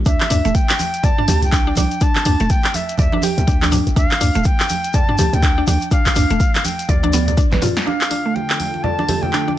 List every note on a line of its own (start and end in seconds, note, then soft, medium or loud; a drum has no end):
0.06 0.16 D2 loud
0.06 0.19 D4 loud
0.06 0.57 E5 medium
0.06 kick loud
0.06 closed hi-hat medium
0.06 shekere medium
0.20 clap medium
0.20 muted conga medium
0.30 0.41 D2 medium
0.30 0.44 D4 loud
0.30 mid tom medium
0.30 open hi-hat medium
0.30 shekere medium
0.45 0.52 D1 loud
0.45 0.54 A3 medium
0.45 closed hi-hat soft
0.45 muted conga soft
0.45 shekere soft
0.55 1.06 G5 loud
0.55 kick loud
0.55 closed hi-hat medium
0.55 shekere medium
0.69 clap loud
0.69 muted conga soft
0.79 open hi-hat medium
0.79 high conga medium
0.79 shekere medium
0.94 closed hi-hat soft
0.94 shekere soft
1.03 1.17 D5 loud
1.03 1.43 A5 loud
1.03 kick loud
1.03 closed hi-hat medium
1.03 muted conga soft
1.03 low conga loud
1.03 shekere medium
1.18 1.24 D4 loud
1.18 mid tom medium
1.28 1.44 D2 medium
1.28 1.41 G4 medium
1.28 open hi-hat medium
1.28 muted conga medium
1.28 high conga loud
1.28 low conga loud
1.28 shekere loud
1.42 1.72 C2 loud
1.42 1.75 G5 loud
1.42 closed hi-hat soft
1.42 low conga medium
1.42 shekere soft
1.52 1.60 D4 medium
1.52 kick loud
1.52 clap medium
1.52 closed hi-hat medium
1.52 muted conga soft
1.52 shekere medium
1.67 1.76 D4 loud
1.75 1.87 C2 loud
1.75 1.90 D4 loud
1.75 2.04 G5 medium
1.75 open hi-hat medium
1.75 muted conga medium
1.75 high conga loud
1.75 shekere loud
1.91 closed hi-hat soft
1.91 shekere soft
2.01 2.15 D4 loud
2.01 2.52 A5 loud
2.01 kick loud
2.01 closed hi-hat medium
2.01 shekere medium
2.15 clap medium
2.15 muted conga medium
2.25 2.36 D2 medium
2.25 2.39 D4 loud
2.25 mid tom medium
2.25 open hi-hat medium
2.25 shekere medium
2.40 2.47 D1 loud
2.40 2.50 A3 loud
2.40 closed hi-hat soft
2.40 muted conga soft
2.40 shekere soft
2.50 2.77 G5 loud
2.50 kick loud
2.50 closed hi-hat medium
2.50 shekere medium
2.63 clap medium
2.63 muted conga soft
2.74 2.99 E5 medium
2.74 open hi-hat medium
2.74 high conga medium
2.74 shekere medium
2.89 closed hi-hat soft
2.89 shekere soft
2.98 3.09 D2 medium
2.98 3.12 D5 loud
2.98 3.25 E5 medium
2.98 kick loud
2.98 closed hi-hat medium
2.98 muted conga soft
2.98 high conga medium
2.98 low conga loud
2.98 shekere medium
3.12 3.19 D4 loud
3.12 high conga loud
3.22 3.36 G4 medium
3.22 3.72 G5 medium
3.22 open hi-hat medium
3.22 muted conga soft
3.22 high conga medium
3.22 shekere loud
3.38 3.45 D2 medium
3.38 closed hi-hat soft
3.38 low conga medium
3.38 shekere soft
3.47 3.80 D2 loud
3.47 3.55 D4 medium
3.47 kick loud
3.47 closed hi-hat medium
3.47 muted conga soft
3.47 shekere medium
3.62 3.71 D4 loud
3.62 clap medium
3.62 high conga medium
3.71 3.85 D4 loud
3.71 mid tom medium
3.71 open hi-hat medium
3.71 muted conga medium
3.71 high conga loud
3.71 shekere medium
3.87 3.94 A1 medium
3.87 closed hi-hat soft
3.87 shekere soft
3.96 4.07 D2 loud
3.96 4.09 D4 loud
3.96 4.48 F5 loud
3.96 kick loud
3.96 closed hi-hat medium
3.96 shekere medium
4.11 clap medium
4.11 muted conga medium
4.21 4.31 D2 medium
4.21 4.34 D4 loud
4.21 mid tom medium
4.21 open hi-hat medium
4.21 shekere medium
4.34 4.43 D1 loud
4.34 4.45 A3 loud
4.34 closed hi-hat soft
4.34 muted conga soft
4.34 shekere soft
4.44 4.97 G5 loud
4.44 kick loud
4.44 closed hi-hat medium
4.44 shekere soft
4.60 clap medium
4.60 muted conga soft
4.69 open hi-hat medium
4.69 high conga medium
4.69 shekere medium
4.84 closed hi-hat soft
4.84 shekere soft
4.93 5.07 D5 loud
4.93 5.35 A5 loud
4.93 kick loud
4.93 closed hi-hat medium
4.93 muted conga soft
4.93 low conga loud
4.93 shekere medium
5.09 5.14 D4 loud
5.09 mid tom medium
5.18 5.29 D2 medium
5.18 5.32 G4 medium
5.18 open hi-hat medium
5.18 muted conga medium
5.18 high conga loud
5.18 low conga loud
5.18 shekere medium
5.33 5.63 D2 loud
5.33 5.67 G5 loud
5.33 closed hi-hat soft
5.33 low conga medium
5.33 shekere soft
5.43 5.51 D4 medium
5.43 kick loud
5.43 clap medium
5.43 closed hi-hat medium
5.43 muted conga soft
5.43 shekere medium
5.58 5.66 D4 loud
5.67 5.78 D2 loud
5.67 5.80 D4 loud
5.67 5.90 G5 loud
5.67 open hi-hat medium
5.67 muted conga soft
5.67 high conga loud
5.67 shekere medium
5.81 closed hi-hat soft
5.81 shekere soft
5.91 6.05 D4 loud
5.91 6.67 F5 loud
5.91 kick loud
5.91 closed hi-hat medium
5.91 shekere soft
6.05 kick medium
6.05 clap medium
6.05 closed hi-hat soft
6.05 muted conga medium
6.05 shekere soft
6.15 6.26 D2 medium
6.15 6.29 D4 medium
6.15 mid tom medium
6.15 open hi-hat medium
6.15 shekere medium
6.30 6.37 D1 loud
6.30 6.40 A3 medium
6.30 closed hi-hat soft
6.30 muted conga soft
6.30 shekere soft
6.40 kick loud
6.40 closed hi-hat medium
6.40 shekere medium
6.55 clap medium
6.55 closed hi-hat soft
6.55 muted conga soft
6.55 shekere soft
6.65 6.91 G5 medium
6.65 open hi-hat medium
6.65 high conga medium
6.65 shekere medium
6.79 closed hi-hat soft
6.79 shekere soft
6.89 7.46 D2 loud
6.89 7.02 D5 loud
6.89 7.38 D5 medium
6.89 kick loud
6.89 closed hi-hat medium
6.89 muted conga soft
6.89 high conga medium
6.89 low conga loud
6.89 shekere medium
7.03 7.09 D4 loud
7.03 closed hi-hat soft
7.03 high conga loud
7.13 7.27 B3 loud
7.13 open hi-hat medium
7.13 muted conga medium
7.13 high conga loud
7.13 shekere loud
7.28 closed hi-hat soft
7.28 low conga loud
7.28 shekere soft
7.37 7.46 D4 loud
7.37 kick loud
7.37 closed hi-hat medium
7.37 muted conga soft
7.37 shekere soft
7.52 7.59 A1 loud
7.52 7.62 B4 medium
7.52 snare medium
7.52 high conga loud
7.62 7.75 F4 medium
7.62 mid tom medium
7.62 open hi-hat medium
7.62 mid tom medium
7.62 muted conga medium
7.62 high conga loud
7.62 shekere medium
7.76 snare medium
7.76 closed hi-hat soft
7.76 shekere soft
7.86 9.58 D3 medium
7.86 9.58 F3 medium
7.86 9.58 A3 medium
7.86 8.00 D4 loud
7.86 9.58 F4 medium
7.86 9.58 A4 medium
7.86 8.37 F5 medium
7.86 muted conga soft
8.01 clap medium
8.11 8.24 D4 loud
8.11 open hi-hat medium
8.11 muted conga soft
8.26 8.35 A3 medium
8.35 8.85 G5 loud
8.35 muted conga soft
8.50 clap medium
8.60 open hi-hat medium
8.60 high conga medium
8.74 muted conga soft
8.83 8.97 D5 loud
8.83 9.23 A5 loud
8.83 low conga loud
8.99 9.04 D4 loud
8.99 muted conga medium
9.08 9.22 G4 medium
9.08 open hi-hat medium
9.08 high conga medium
9.08 low conga loud
9.22 9.56 G5 loud
9.22 muted conga soft
9.22 low conga medium
9.33 9.41 D4 medium
9.33 clap medium
9.48 9.56 D4 loud
9.48 muted conga soft